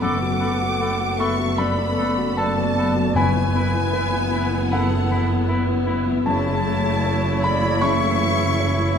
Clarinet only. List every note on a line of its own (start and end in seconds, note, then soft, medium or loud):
0.02 0.18 A4 medium
0.41 0.57 A4 medium
0.81 0.97 A4 soft
1.20 1.36 A4 medium
1.58 1.74 A4 medium
1.97 2.13 A4 medium
2.38 2.54 A4 medium
2.77 2.93 A4 medium
3.15 3.31 E4 medium
3.55 3.71 E4 medium
3.93 4.09 E4 medium
4.31 4.47 E4 medium
4.71 4.87 E4 medium
5.11 5.27 E4 medium
5.49 5.65 E4 medium
5.87 6.03 E4 medium
6.26 8.98 E4 medium